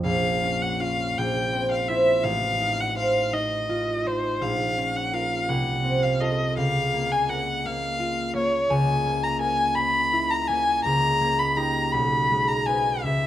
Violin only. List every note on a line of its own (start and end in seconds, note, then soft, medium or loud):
0.06 0.63 F5 medium
0.62 0.82 F#5 medium
0.80 1.19 F5 medium
1.18 1.71 G5 medium
1.71 1.90 F5 medium
1.88 2.25 E5 medium
2.23 2.82 F5 medium
2.80 2.97 F#5 medium
2.97 3.35 F5 medium
3.33 4.08 D#5 medium
4.07 4.43 C5 medium
4.42 4.98 F5 medium
4.96 5.15 F#5 medium
5.14 5.50 F5 medium
5.49 6.04 F#5 medium
6.03 6.22 F5 medium
6.21 6.57 D#5 medium
6.58 7.13 F5 medium
7.12 7.31 G#5 medium
7.29 7.67 F#5 medium
7.66 8.36 F5 medium
8.36 8.72 C#5 medium
8.70 9.25 G#5 medium
9.23 9.41 A#5 medium
9.41 9.76 G#5 medium
9.75 10.32 B5 medium
10.30 10.49 A#5 medium
10.47 10.84 G#5 medium
10.84 11.40 A#5 medium
11.39 11.58 B5 medium
11.56 11.94 A#5 medium
11.93 12.49 B5 medium
12.48 12.68 A#5 medium
12.66 13.04 G#5 medium
13.03 13.27 E5 medium